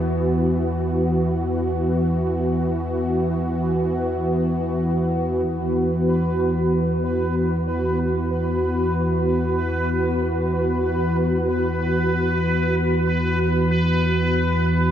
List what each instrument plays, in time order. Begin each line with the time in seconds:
Already playing: synth drone E2 E3, analog synth pad E3 B3 F#4
5.44 synth drone E2 E3, synth texture B4